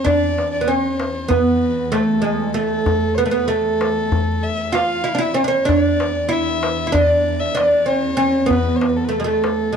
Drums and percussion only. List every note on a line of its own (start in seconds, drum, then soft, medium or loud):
0.06 darbuka dum medium
0.38 darbuka tek medium
1.00 darbuka tek medium
1.30 darbuka dum medium
1.92 darbuka tek medium
2.55 darbuka ka soft
2.86 darbuka dum medium
3.50 darbuka ka soft
3.81 darbuka tek medium
4.12 darbuka dum medium
4.43 darbuka ka soft
4.75 darbuka tek medium
5.06 darbuka ka soft
5.38 darbuka ka soft
5.69 darbuka dum medium
6.00 darbuka tek medium
6.32 darbuka ka soft
6.63 darbuka tek medium
6.94 darbuka dum medium
7.26 darbuka ka soft
7.57 darbuka tek medium
7.88 darbuka ka soft
8.19 darbuka ka soft
8.50 darbuka dum medium
8.66 darbuka ka soft
8.81 darbuka tek medium
8.97 darbuka ka soft
9.13 darbuka ka soft
9.44 darbuka tek medium